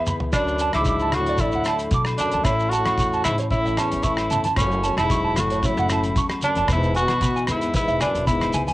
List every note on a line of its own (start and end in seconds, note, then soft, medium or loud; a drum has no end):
0.00 0.28 E2 medium
0.00 0.34 E3 medium
0.00 0.31 B3 medium
0.00 0.31 G#4 medium
0.07 0.32 E4 medium
0.07 0.15 B5 medium
0.07 mid tom medium
0.07 low conga medium
0.07 shekere medium
0.20 floor tom medium
0.33 0.68 D2 loud
0.33 0.72 F#2 medium
0.33 2.42 D3 medium
0.33 1.13 A3 medium
0.33 0.71 D4 medium
0.33 0.42 D5 medium
0.33 kick medium
0.33 cross-stick medium
0.33 closed hi-hat medium
0.33 low agogo medium
0.33 shekere medium
0.48 shekere soft
0.59 0.69 A5 medium
0.59 closed hi-hat soft
0.59 shekere medium
0.73 1.12 C#2 medium
0.73 1.16 E4 medium
0.73 0.82 D6 medium
0.73 cross-stick medium
0.73 closed hi-hat soft
0.73 high conga medium
0.73 low agogo medium
0.77 1.19 G#2 medium
0.85 1.90 F#3 medium
0.85 2.18 D4 medium
0.85 0.95 D6 medium
0.85 kick medium
0.85 closed hi-hat soft
0.85 shekere medium
1.00 1.09 A5 medium
1.00 shekere soft
1.12 1.35 D2 medium
1.12 2.46 A3 medium
1.12 1.42 F#4 loud
1.12 cross-stick medium
1.12 closed hi-hat medium
1.12 high conga medium
1.12 low conga medium
1.12 low agogo medium
1.17 1.42 A2 medium
1.26 1.36 D5 medium
1.26 closed hi-hat soft
1.38 2.42 A2 medium
1.38 1.94 A2 medium
1.38 1.93 E4 medium
1.38 kick medium
1.38 closed hi-hat soft
1.38 high conga medium
1.38 shekere loud
1.42 1.49 D5 medium
1.52 1.87 D2 medium
1.52 1.62 F#5 medium
1.52 shekere soft
1.65 1.75 A5 medium
1.65 cross-stick medium
1.65 closed hi-hat medium
1.65 low agogo medium
1.65 shekere medium
1.79 closed hi-hat soft
1.79 shekere soft
1.91 2.15 B2 loud
1.91 2.42 F#3 medium
1.91 2.01 D6 medium
1.91 kick medium
1.91 closed hi-hat medium
1.91 shekere medium
2.05 cross-stick medium
2.05 low agogo medium
2.05 shekere soft
2.18 2.48 F#2 medium
2.18 2.46 D4 medium
2.18 2.43 D4 soft
2.18 2.28 A5 medium
2.18 closed hi-hat medium
2.18 low conga medium
2.18 shekere medium
2.32 2.44 D2 medium
2.32 2.40 A5 medium
2.32 closed hi-hat medium
2.32 high conga medium
2.32 shekere soft
2.44 2.80 A1 loud
2.44 3.50 A2 medium
2.44 2.76 A2 medium
2.44 3.26 C#4 medium
2.44 2.71 E4 loud
2.44 2.53 C#5 medium
2.44 muted steel-string acoustic guitar stroke medium
2.44 kick medium
2.44 cross-stick medium
2.44 closed hi-hat medium
2.44 low agogo medium
2.44 shekere medium
2.60 shekere soft
2.70 2.98 E4 medium
2.70 3.24 F#4 loud
2.70 2.80 A5 medium
2.70 closed hi-hat medium
2.70 shekere medium
2.76 3.27 A2 loud
2.86 3.20 E2 medium
2.86 2.93 C#6 medium
2.86 cross-stick medium
2.86 closed hi-hat soft
2.86 high conga medium
2.86 low agogo medium
2.98 4.04 E3 medium
2.98 3.07 C#6 medium
2.98 muted steel-string acoustic guitar stroke medium
2.98 kick medium
2.98 closed hi-hat medium
2.98 shekere medium
3.13 3.20 A5 medium
3.13 shekere soft
3.24 3.39 G#2 medium
3.24 3.48 A2 medium
3.24 4.31 C#4 medium
3.24 3.36 E4 medium
3.24 cross-stick medium
3.24 closed hi-hat soft
3.24 high conga medium
3.24 low conga medium
3.24 low agogo medium
3.24 shekere medium
3.38 3.46 C#5 medium
3.38 closed hi-hat soft
3.38 shekere soft
3.50 4.54 A2 medium
3.50 3.81 A2 medium
3.50 3.80 E4 loud
3.50 3.59 C#5 medium
3.50 kick medium
3.50 closed hi-hat medium
3.50 high conga medium
3.50 shekere medium
3.66 3.76 A1 medium
3.66 3.72 E5 medium
3.66 shekere soft
3.77 4.09 E2 medium
3.77 4.05 C#4 medium
3.77 3.86 A5 medium
3.77 cross-stick medium
3.77 closed hi-hat medium
3.77 low agogo medium
3.77 shekere medium
3.92 4.26 A1 medium
3.92 closed hi-hat soft
3.92 shekere soft
4.03 4.58 E3 medium
4.03 4.44 E4 medium
4.03 4.12 C#6 medium
4.03 kick medium
4.03 closed hi-hat medium
4.03 shekere medium
4.08 4.46 A2 medium
4.17 cross-stick medium
4.17 low agogo medium
4.17 shekere soft
4.30 4.54 G1 medium
4.30 4.55 C#4 medium
4.30 4.38 A5 medium
4.30 closed hi-hat medium
4.30 low conga medium
4.30 shekere medium
4.44 4.52 A5 medium
4.44 closed hi-hat medium
4.44 high conga medium
4.44 shekere soft
4.57 4.92 F#1 loud
4.57 6.70 F#2 medium
4.57 5.35 A3 medium
4.57 4.94 C#4 medium
4.57 4.65 C#5 medium
4.57 kick loud
4.57 cross-stick medium
4.57 closed hi-hat medium
4.57 low agogo medium
4.57 shekere loud
4.62 4.97 F#2 medium
4.72 shekere soft
4.84 5.09 C#4 medium
4.84 4.91 A5 medium
4.84 closed hi-hat soft
4.84 shekere medium
4.97 5.37 E1 medium
4.97 5.42 G#2 medium
4.97 5.41 E4 loud
4.97 5.05 A5 medium
4.97 cross-stick medium
4.97 closed hi-hat soft
4.97 high conga medium
4.97 low agogo medium
5.10 6.15 F#3 medium
5.10 6.42 C#4 medium
5.10 5.18 C#6 medium
5.10 kick medium
5.10 closed hi-hat soft
5.10 shekere medium
5.24 5.31 A5 medium
5.36 5.60 F#1 medium
5.36 6.69 A3 medium
5.36 5.67 F#4 medium
5.36 cross-stick medium
5.36 closed hi-hat medium
5.36 high conga medium
5.36 low conga medium
5.36 low agogo medium
5.36 shekere medium
5.41 5.66 A2 medium
5.50 5.58 C#5 medium
5.50 closed hi-hat soft
5.50 shekere soft
5.62 6.17 A2 medium
5.62 6.16 C#3 medium
5.62 6.17 E4 medium
5.62 5.72 C#5 medium
5.62 kick medium
5.62 closed hi-hat soft
5.62 high conga medium
5.62 shekere loud
5.77 6.11 F#1 loud
5.77 5.85 F#5 medium
5.77 shekere soft
5.89 5.99 A5 medium
5.89 cross-stick medium
5.89 closed hi-hat soft
5.89 low agogo medium
5.89 shekere medium
6.03 closed hi-hat soft
6.03 shekere soft
6.16 6.39 E2 medium
6.16 6.66 F#3 medium
6.16 6.24 C#6 medium
6.16 kick medium
6.16 closed hi-hat soft
6.16 shekere medium
6.29 cross-stick medium
6.29 low agogo medium
6.29 shekere soft
6.42 6.69 C#4 soft
6.42 6.68 D4 loud
6.42 6.51 A5 medium
6.42 closed hi-hat soft
6.42 low conga medium
6.42 shekere medium
6.47 6.70 F#2 medium
6.55 6.67 F#1 medium
6.55 6.64 A5 medium
6.55 closed hi-hat soft
6.55 high conga medium
6.55 shekere soft
6.68 7.03 E1 loud
6.68 8.73 E3 medium
6.68 7.21 B3 medium
6.68 6.77 B4 medium
6.68 kick loud
6.68 cross-stick medium
6.68 closed hi-hat medium
6.68 low agogo medium
6.68 shekere loud
6.72 6.96 G#2 medium
6.72 6.95 E4 loud
6.83 shekere soft
6.94 7.22 E4 medium
6.94 7.45 F#4 loud
6.94 7.03 G#5 medium
6.94 closed hi-hat soft
6.94 shekere medium
6.99 7.47 B2 loud
7.08 7.43 B1 medium
7.08 7.17 B5 medium
7.08 cross-stick medium
7.08 closed hi-hat soft
7.08 high conga medium
7.08 low agogo medium
7.08 shekere soft
7.21 7.48 B3 medium
7.21 7.29 B5 medium
7.21 kick medium
7.21 closed hi-hat medium
7.21 low conga medium
7.21 shekere medium
7.36 7.43 G#5 medium
7.36 shekere soft
7.47 7.71 E2 medium
7.47 7.74 G#2 medium
7.47 7.62 A3 medium
7.47 cross-stick medium
7.47 closed hi-hat soft
7.47 high conga medium
7.47 low conga medium
7.47 low agogo medium
7.47 shekere medium
7.51 7.74 E4 medium
7.61 8.26 B3 medium
7.61 closed hi-hat soft
7.61 shekere soft
7.74 8.01 G#2 medium
7.74 8.73 B2 medium
7.74 8.00 E4 loud
7.74 7.82 B4 medium
7.74 kick medium
7.74 closed hi-hat medium
7.74 high conga medium
7.74 shekere loud
7.88 7.99 E1 medium
7.88 7.95 E5 medium
7.88 shekere soft
8.00 8.27 F#2 medium
8.00 8.26 D4 medium
8.00 8.08 G#5 medium
8.00 cross-stick medium
8.00 closed hi-hat soft
8.00 low conga medium
8.00 low agogo medium
8.00 shekere medium
8.15 8.48 E1 medium
8.15 closed hi-hat soft
8.15 shekere soft
8.27 8.66 G#2 medium
8.27 8.54 B3 medium
8.27 8.65 E4 medium
8.27 8.35 B5 medium
8.27 kick medium
8.27 closed hi-hat medium
8.27 shekere medium
8.41 cross-stick medium
8.41 high conga medium
8.41 low agogo medium
8.41 shekere soft
8.53 8.73 C#2 medium
8.53 8.73 B3 medium
8.53 8.62 G#5 medium
8.53 closed hi-hat medium
8.53 low conga medium
8.53 shekere medium
8.67 8.73 G#5 medium
8.67 closed hi-hat medium
8.67 high conga medium
8.67 shekere soft